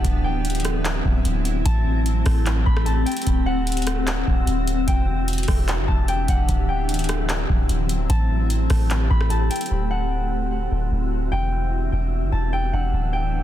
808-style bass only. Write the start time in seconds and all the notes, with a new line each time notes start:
0.04 D1
1.05 D1
1.25 D1
1.65 A1
2.26 A1
2.67 A1
3.27 D1
4.28 D1
4.47 D1
4.88 E1
5.48 E1
5.78 G1
5.89 E1
6.28 E1
6.49 D1
7.49 D1
7.70 D1
8.10 A1
8.70 A1
9.11 A1
9.71 D1
10.71 D1
10.92 D1
11.32 E1
11.92 E1
12.23 G1
12.33 E1
12.73 E1
12.93 D1